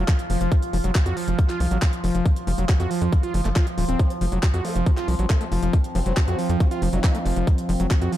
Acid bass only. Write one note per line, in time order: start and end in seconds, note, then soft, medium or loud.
0.08 0.12 F3 medium
0.30 0.40 F3 medium
0.41 0.51 F3 loud
0.73 0.78 F3 loud
0.84 0.91 F#3 medium
0.95 0.99 F#4 medium
1.06 1.16 F#4 medium
1.17 1.27 F3 medium
1.28 1.38 F3 loud
1.39 1.43 F3 medium
1.49 1.60 F4 loud
1.60 1.67 F3 medium
1.71 1.78 F#3 medium
1.82 1.86 F3 medium
2.04 2.14 F3 medium
2.15 2.25 F3 loud
2.47 2.51 F3 loud
2.58 2.65 F#3 medium
2.69 2.73 F#4 medium
2.80 2.90 F#4 medium
2.91 3.01 F3 medium
3.02 3.12 F3 loud
3.12 3.17 F3 medium
3.23 3.34 F4 loud
3.34 3.41 F3 medium
3.45 3.49 A3 medium
3.56 3.66 F4 loud
3.78 3.85 F3 medium
3.89 3.99 C4 medium
3.99 4.04 F3 medium
4.21 4.25 F3 loud
4.32 4.39 F#3 medium
4.43 4.47 F#4 medium
4.54 4.64 F#4 medium
4.65 4.75 F3 medium
4.76 4.86 F3 loud
4.86 4.91 F3 medium
4.97 5.08 F4 loud
5.08 5.15 F3 medium
5.19 5.26 F#3 medium
5.30 5.34 F3 medium
5.41 5.45 A3 medium
5.52 5.62 F3 medium
5.62 5.73 F3 loud
5.73 5.78 F3 medium
5.95 5.99 F3 loud
6.06 6.13 F#3 medium
6.17 6.21 F#4 medium
6.28 6.38 F#4 medium
6.39 6.49 F3 medium
6.49 6.60 F3 loud
6.60 6.65 F3 medium
6.71 6.82 F4 loud
6.82 6.89 F3 medium
6.93 7.00 F#3 medium
7.04 7.08 F3 medium
7.15 7.19 A3 medium
7.26 7.36 F3 medium
7.36 7.47 F3 loud
7.47 7.51 F3 medium
7.69 7.73 F3 loud
7.80 7.87 F#3 medium
7.91 7.95 F#4 medium
8.02 8.12 F#4 medium
8.12 8.17 F3 medium